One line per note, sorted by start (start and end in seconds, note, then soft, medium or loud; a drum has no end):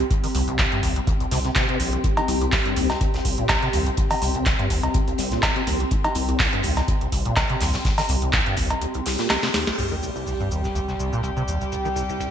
0.00 12.31 C4 medium
0.00 12.31 G4 medium
0.00 12.31 G5 medium
0.00 12.31 C6 medium
0.00 closed hi-hat soft
0.11 0.15 C2 medium
0.11 kick loud
0.11 closed hi-hat medium
0.24 0.27 D#3 medium
0.24 closed hi-hat soft
0.24 open hi-hat medium
0.35 0.42 C2 medium
0.35 0.52 C2 loud
0.35 closed hi-hat medium
0.35 open hi-hat loud
0.48 0.57 C2 medium
0.48 closed hi-hat soft
0.59 0.66 C2 loud
0.59 kick loud
0.59 snare loud
0.59 clap loud
0.59 closed hi-hat medium
0.72 0.81 G2 medium
0.72 closed hi-hat soft
0.83 1.01 C2 medium
0.83 0.94 D#2 medium
0.83 kick medium
0.83 closed hi-hat medium
0.83 open hi-hat loud
0.96 1.00 C2 loud
0.96 closed hi-hat soft
1.07 1.12 D2 medium
1.07 kick loud
1.07 closed hi-hat medium
1.20 1.27 C2 medium
1.20 closed hi-hat soft
1.31 1.49 C2 loud
1.31 1.39 C3 loud
1.31 snare soft
1.31 closed hi-hat medium
1.31 open hi-hat loud
1.44 1.51 C3 medium
1.44 snare soft
1.44 closed hi-hat soft
1.55 1.67 C3 loud
1.55 kick loud
1.55 snare loud
1.55 clap loud
1.55 closed hi-hat medium
1.69 1.78 C3 loud
1.69 closed hi-hat soft
1.80 1.98 A#1 loud
1.80 1.91 C2 medium
1.80 closed hi-hat medium
1.80 open hi-hat loud
1.93 1.99 C2 medium
1.93 closed hi-hat soft
2.04 2.08 C2 medium
2.04 kick loud
2.04 closed hi-hat medium
2.17 2.21 D#3 medium
2.17 closed hi-hat soft
2.17 cowbell medium
2.28 2.36 C2 medium
2.28 2.46 C2 loud
2.28 closed hi-hat medium
2.28 open hi-hat loud
2.41 2.51 C2 medium
2.41 closed hi-hat soft
2.52 kick loud
2.52 snare loud
2.52 clap loud
2.52 closed hi-hat medium
2.52 open hi-hat medium
2.66 2.75 G2 medium
2.66 closed hi-hat soft
2.76 2.94 C2 medium
2.76 2.88 D#2 medium
2.76 closed hi-hat medium
2.76 open hi-hat loud
2.90 2.93 C2 loud
2.90 snare medium
2.90 closed hi-hat soft
2.90 cowbell soft
3.01 3.05 D2 medium
3.01 kick loud
3.01 closed hi-hat medium
3.14 3.20 C2 medium
3.14 snare medium
3.14 closed hi-hat soft
3.25 3.43 C2 loud
3.25 3.36 C2 medium
3.25 kick medium
3.25 closed hi-hat medium
3.25 open hi-hat loud
3.38 3.47 A#2 medium
3.38 closed hi-hat soft
3.49 3.57 C2 medium
3.49 kick loud
3.49 snare loud
3.49 clap loud
3.49 closed hi-hat medium
3.49 cowbell medium
3.62 3.69 C3 loud
3.62 closed hi-hat soft
3.73 3.91 C2 medium
3.73 3.84 D#2 medium
3.73 closed hi-hat medium
3.73 open hi-hat loud
3.86 3.90 C2 medium
3.86 closed hi-hat soft
3.97 4.02 C2 medium
3.97 kick loud
3.97 closed hi-hat medium
4.10 4.15 D#3 medium
4.10 closed hi-hat soft
4.10 open hi-hat medium
4.10 cowbell medium
4.22 4.29 C2 medium
4.22 4.40 C2 loud
4.22 closed hi-hat medium
4.22 open hi-hat loud
4.35 4.44 C2 medium
4.35 closed hi-hat soft
4.35 closed hi-hat medium
4.46 4.53 C2 loud
4.46 kick loud
4.46 snare loud
4.46 clap loud
4.46 closed hi-hat medium
4.59 4.68 G2 medium
4.59 closed hi-hat soft
4.70 4.88 C2 medium
4.70 4.81 D#2 medium
4.70 kick medium
4.70 closed hi-hat medium
4.70 open hi-hat loud
4.83 4.87 C2 loud
4.83 closed hi-hat medium
4.83 cowbell soft
4.94 4.99 D2 medium
4.94 kick loud
4.94 closed hi-hat medium
5.08 5.14 C2 medium
5.08 closed hi-hat soft
5.18 5.30 C2 medium
5.18 5.36 C2 loud
5.18 snare soft
5.18 closed hi-hat medium
5.18 open hi-hat loud
5.32 5.41 A#2 medium
5.32 snare soft
5.32 closed hi-hat medium
5.43 5.50 C2 medium
5.43 kick loud
5.43 snare loud
5.43 clap loud
5.43 closed hi-hat medium
5.43 cowbell medium
5.56 5.62 C3 loud
5.56 closed hi-hat soft
5.67 5.85 C2 medium
5.67 5.78 D#2 medium
5.67 closed hi-hat medium
5.67 open hi-hat loud
5.80 5.84 C2 medium
5.80 closed hi-hat medium
5.91 5.96 C2 medium
5.91 kick loud
5.91 closed hi-hat medium
6.04 6.08 D#3 medium
6.04 closed hi-hat soft
6.04 cowbell medium
6.15 6.23 C2 medium
6.15 6.33 C2 loud
6.15 closed hi-hat medium
6.15 open hi-hat loud
6.29 6.38 C2 medium
6.29 closed hi-hat soft
6.29 closed hi-hat medium
6.39 kick loud
6.39 snare loud
6.39 clap loud
6.39 closed hi-hat medium
6.39 open hi-hat medium
6.53 6.62 G2 medium
6.53 closed hi-hat soft
6.63 6.82 C2 medium
6.63 6.75 D#2 medium
6.63 closed hi-hat medium
6.63 open hi-hat medium
6.77 6.81 C2 loud
6.77 snare medium
6.77 closed hi-hat medium
6.77 cowbell soft
6.88 6.92 D2 medium
6.88 kick loud
6.88 closed hi-hat medium
7.01 7.07 C2 medium
7.01 closed hi-hat soft
7.12 7.30 C2 loud
7.12 7.23 C2 medium
7.12 kick medium
7.12 closed hi-hat medium
7.12 open hi-hat loud
7.25 7.35 A#2 medium
7.25 closed hi-hat medium
7.36 7.44 C2 medium
7.36 kick loud
7.36 snare loud
7.36 clap loud
7.36 closed hi-hat medium
7.36 cowbell medium
7.50 7.56 C3 loud
7.50 closed hi-hat soft
7.60 7.78 C2 medium
7.60 7.72 D#2 medium
7.60 snare loud
7.60 open hi-hat medium
7.60 open hi-hat loud
7.74 7.77 C2 medium
7.74 snare loud
7.74 closed hi-hat medium
7.74 open hi-hat medium
7.85 7.89 C2 medium
7.85 kick loud
7.85 snare loud
7.85 closed hi-hat medium
7.85 open hi-hat medium
7.98 8.02 D#3 medium
7.98 snare loud
7.98 open hi-hat medium
7.98 cowbell medium
8.09 8.16 C2 medium
8.09 8.27 C2 loud
8.09 closed hi-hat medium
8.09 open hi-hat loud
8.21 8.31 C2 medium
8.21 closed hi-hat soft
8.21 closed hi-hat medium
8.33 8.40 C2 loud
8.33 kick loud
8.33 snare loud
8.33 clap loud
8.33 closed hi-hat medium
8.46 8.55 G2 medium
8.46 closed hi-hat soft
8.57 8.75 C2 medium
8.57 8.68 D#2 medium
8.57 kick medium
8.57 closed hi-hat medium
8.57 open hi-hat loud
8.70 8.74 C2 loud
8.70 closed hi-hat medium
8.70 closed hi-hat soft
8.70 cowbell soft
8.81 8.86 D2 medium
8.81 closed hi-hat medium
8.94 9.01 C2 medium
8.94 closed hi-hat soft
9.06 9.17 C2 medium
9.06 snare loud
9.06 open hi-hat medium
9.06 open hi-hat loud
9.18 9.28 A#2 medium
9.18 snare loud
9.18 closed hi-hat medium
9.18 open hi-hat medium
9.30 9.37 C2 medium
9.30 snare medium
9.30 snare loud
9.30 clap loud
9.30 closed hi-hat medium
9.30 open hi-hat medium
9.30 cowbell medium
9.42 9.49 C3 loud
9.42 snare medium
9.42 closed hi-hat soft
9.42 open hi-hat medium
9.54 9.65 D#2 medium
9.54 snare medium
9.54 closed hi-hat medium
9.54 open hi-hat loud
9.67 9.71 C2 medium
9.67 snare medium
9.67 snare soft
9.67 closed hi-hat medium
9.78 12.31 C2 medium
9.78 9.83 C2 medium
9.78 12.31 G3 medium
9.78 12.31 G4 medium
9.78 closed hi-hat medium
9.78 crash medium
9.78 sub drop medium
9.78 shaker soft
9.91 9.95 D#3 medium
9.91 closed hi-hat soft
9.91 shaker soft
10.03 10.10 C2 medium
10.03 closed hi-hat medium
10.03 shaker medium
10.16 10.25 C2 medium
10.16 closed hi-hat soft
10.16 shaker soft
10.26 10.34 C2 loud
10.26 open hi-hat medium
10.26 shaker soft
10.40 10.49 G2 medium
10.40 closed hi-hat soft
10.40 shaker soft
10.51 10.62 D#2 medium
10.51 closed hi-hat medium
10.51 shaker medium
10.64 10.68 C2 loud
10.64 snare soft
10.64 shaker soft
10.75 10.79 D2 medium
10.75 closed hi-hat medium
10.75 shaker soft
10.88 10.94 C2 medium
10.88 snare soft
10.88 shaker soft
10.99 11.10 C2 medium
10.99 closed hi-hat medium
10.99 shaker medium
11.12 11.22 A#2 medium
11.12 shaker soft
11.23 11.31 C2 medium
11.23 closed hi-hat medium
11.23 shaker soft
11.37 11.43 C3 loud
11.37 shaker soft
11.48 11.59 D#2 medium
11.48 closed hi-hat medium
11.48 shaker medium
11.61 11.65 C2 medium
11.61 closed hi-hat soft
11.61 shaker soft
11.72 11.76 C2 medium
11.72 closed hi-hat medium
11.72 shaker soft
11.85 11.89 D#3 medium
11.85 closed hi-hat soft
11.85 shaker soft
11.96 12.03 C2 medium
11.96 closed hi-hat medium
11.96 shaker medium
12.09 12.18 C2 medium
12.09 closed hi-hat soft
12.09 shaker soft
12.20 12.27 C2 loud
12.20 closed hi-hat medium
12.20 shaker soft